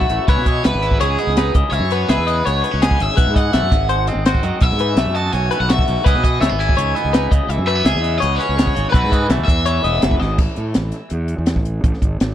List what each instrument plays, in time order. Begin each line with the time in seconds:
Already playing: clean electric guitar F#2 E3 E4 F#4, overdriven electric guitar E5
0.01 kick
0.09 fingered electric bass A1, clean electric guitar A3, closed hi-hat
0.27 fingered electric bass C#2, clean electric guitar C#3 E3 B3 E4 B4, overdriven electric guitar C#5, kick, closed hi-hat
0.37 fingered electric bass B2
0.46 clean electric guitar E3 D#5, kick, closed hi-hat
0.64 fingered electric bass C#2, clean electric guitar B3 E5, overdriven electric guitar B4, snare, closed hi-hat
0.74 fingered electric bass G#1
0.82 clean electric guitar E4, closed hi-hat
0.91 kick
0.99 fingered electric bass C#2, clean electric guitar G#2 C#5, overdriven electric guitar G#4, closed hi-hat
1.18 clean electric guitar B3 D#5, closed hi-hat
1.27 fingered electric bass C#2, snare
1.37 clean electric guitar D#4 B4, snare, closed hi-hat
1.54 fingered electric bass C#2, clean electric guitar C#3 D#5, kick, closed hi-hat
1.71 fingered electric bass C#2, clean electric guitar E3 E5, overdriven electric guitar C#5, closed hi-hat
1.80 fingered electric bass F#2
1.90 clean electric guitar B3 B4, closed hi-hat
2.09 fingered electric bass C#2, clean electric guitar G#4 E5, overdriven electric guitar B4, snare, closed hi-hat
2.18 fingered electric bass E2
2.26 clean electric guitar C#3 D#5, closed hi-hat
2.45 fingered electric bass C#2, clean electric guitar B3 C#5, overdriven electric guitar C#5, closed hi-hat
2.62 clean electric guitar B3 B4, closed hi-hat
2.71 fingered electric bass C#2, clean electric guitar C#4
2.82 clean electric guitar B3 G#4, overdriven electric guitar G#5, snare, closed hi-hat
2.91 kick
2.97 fingered electric bass G#1, clean electric guitar C#3, closed hi-hat
3.03 overdriven electric guitar E5
3.10 snare
3.16 fingered electric bass B1, clean electric guitar B2 B4, kick, closed hi-hat
3.27 fingered electric bass G#2
3.34 clean electric guitar E3 D#5, overdriven electric guitar F#5, kick, closed hi-hat
3.53 fingered electric bass B1, clean electric guitar A3 E5, snare, closed hi-hat
3.63 fingered electric bass F#2
3.71 fingered electric bass G#1, clean electric guitar G#2, kick, closed hi-hat
3.89 clean electric guitar G#3 C5, closed hi-hat
4.07 clean electric guitar C4 D#5, closed hi-hat
4.15 fingered electric bass G#1
4.26 clean electric guitar F#4 C5, snare, closed hi-hat
4.35 kick
4.43 fingered electric bass F#2, clean electric guitar D#3 D#5, closed hi-hat
4.61 fingered electric bass B1, clean electric guitar B2 E5, overdriven electric guitar E5, kick, closed hi-hat
4.71 fingered electric bass G#2
4.79 clean electric guitar E3 B4, closed hi-hat
4.96 fingered electric bass B1, clean electric guitar A3 E5, snare, closed hi-hat
5.06 fingered electric bass F#2
5.15 clean electric guitar F#4 D#5, overdriven electric guitar A5, snare, closed hi-hat
5.25 snare
5.33 fingered electric bass B1, clean electric guitar F#2 C#5, overdriven electric guitar G#5, closed hi-hat
5.51 clean electric guitar A3 B4, closed hi-hat
5.60 fingered electric bass B1, overdriven electric guitar F#5
5.69 clean electric guitar A2 F#4, overdriven electric guitar E5, snare, closed hi-hat
5.79 kick
5.88 fingered electric bass B1, clean electric guitar B2, closed hi-hat
6.04 fingered electric bass C#2, clean electric guitar C#3 E3 B3 E4 B4, overdriven electric guitar D#5, kick, closed hi-hat
6.15 fingered electric bass B2, snare
6.23 clean electric guitar E3 D#5, kick, closed hi-hat
6.41 fingered electric bass C#2, clean electric guitar A3 E5, overdriven electric guitar C#5, snare, closed hi-hat
6.49 fingered electric bass G#1, clean electric guitar B3
6.60 clean electric guitar E4, overdriven electric guitar G#5, closed hi-hat
6.69 kick
6.77 fingered electric bass C#2, clean electric guitar G#2 C#5, closed hi-hat
6.95 clean electric guitar B3 D#5, closed hi-hat
7.05 fingered electric bass C#2
7.13 clean electric guitar D#4 B4, snare, closed hi-hat
7.31 fingered electric bass C#2, clean electric guitar C#3 D#5, kick, closed hi-hat
7.49 fingered electric bass C#2, clean electric guitar E3 E5, closed hi-hat
7.58 fingered electric bass F#2
7.66 clean electric guitar A3 B4, overdriven electric guitar E5, closed hi-hat
7.75 clean electric guitar B3
7.85 fingered electric bass C#2, clean electric guitar G#4 E5, snare, closed hi-hat
7.96 fingered electric bass E2
8.02 clean electric guitar C#3 D#5, closed hi-hat
8.18 clean electric guitar B3 C#5, overdriven electric guitar D#5, closed hi-hat
8.23 fingered electric bass C#2
8.36 clean electric guitar B4, overdriven electric guitar C#5
8.40 clean electric guitar C#4, closed hi-hat
8.49 fingered electric bass C#2
8.57 clean electric guitar B3 G#4, snare, closed hi-hat
8.67 kick
8.75 fingered electric bass G#1, clean electric guitar C#3, closed hi-hat
8.90 clean electric guitar B2 B4, overdriven electric guitar B4
8.94 fingered electric bass B1, clean electric guitar E3 A3 E4 F#4, kick, closed hi-hat
9.03 fingered electric bass G#2, snare
9.11 clean electric guitar E3 D#5, kick, closed hi-hat
9.29 fingered electric bass B1, clean electric guitar A3 E5, snare, closed hi-hat
9.38 fingered electric bass D#2
9.45 clean electric guitar E2, fingered electric bass E2, overdriven electric guitar E5, kick
9.49 closed hi-hat
9.66 clean electric guitar E3 C#5, closed hi-hat
9.84 fingered electric bass E1, clean electric guitar B3 D#5, closed hi-hat
9.94 snare
10.01 fingered electric bass F#1, clean electric guitar F#2 B4, snare, closed hi-hat
10.11 kick
10.20 fingered electric bass G#1, clean electric guitar G#2 D#5, snare
10.38 fingered electric bass A1, kick, crash
10.56 fingered electric bass A2, closed hi-hat
10.74 fingered electric bass A1, snare, closed hi-hat
10.92 snare, closed hi-hat
11.10 fingered electric bass E2, closed hi-hat
11.28 closed hi-hat
11.38 fingered electric bass E2
11.46 snare, closed hi-hat
11.56 fingered electric bass A1, kick
11.65 closed hi-hat
11.84 fingered electric bass A1, kick, closed hi-hat
11.94 snare
12.01 fingered electric bass G#1, kick, closed hi-hat
12.20 fingered electric bass G#1, snare, closed hi-hat
12.31 snare